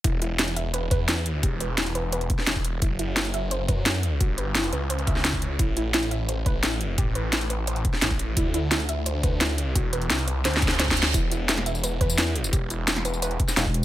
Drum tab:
HH |x-----x-----x--x--x-----x-----x-----x-----x-----|x-----x-----x--x--x-----x--x--x-----x-----x-----|x-----x-----x--x--x-----x-----x-----x-----x-----|x-----x-----x--x--x-----x--x--x-----x-----x-----|
TB |------------------------------------------------|------------------------------------------------|------------------------------------------------|------------------------------------------------|
SD |------------o-----------------------o-----------|------------o--------------------o--o-----------|------------o-----------------------o-----------|------------o--------------------o--o-----------|
BD |o-----------------------------o-----------------|o-----------------------------o--------o--------|o-----------------------------o-----------------|o-----------------------------o--------o--------|

HH |x-----x-----x--x--x-----x-----x-----x-----x-----|x-----x-----x--x--x-----x--x--x-----x-----x-----|x-----x-----x--x--x-----x-----x-----x-----x-----|x-----x--x--x--x--x-----x--x--x--x--x-----x-----|
TB |------------------------------------------------|------------------------------------------------|------------------------------------------------|------------------------------------------------|
SD |------------o-----------------------o-----------|------------o--------------------o--o-----------|------------o-----------------------o-----------|------------o-----------o---o---o---o---o---o---|
BD |o-----------------------------o-----------------|o-----------------------------o--------o--------|o-----------------------------o-----------------|o-----------------------------o--------o--------|

HH |x-----x-----x--x--x-----x-----x-----x-----x-----|x-----x-----x--x--x-----x--x--x-----x-----x-----|
TB |x-----x-----x-----x--x--x--------x--x--------x--|x-----x-----x-----x--x--x--------x--x-----------|
SD |------------o--o--------------------o-----------|------------o--o-----------------o--o-----------|
BD |o-----------------------------o-----------------|o-----------------------------o--------o--------|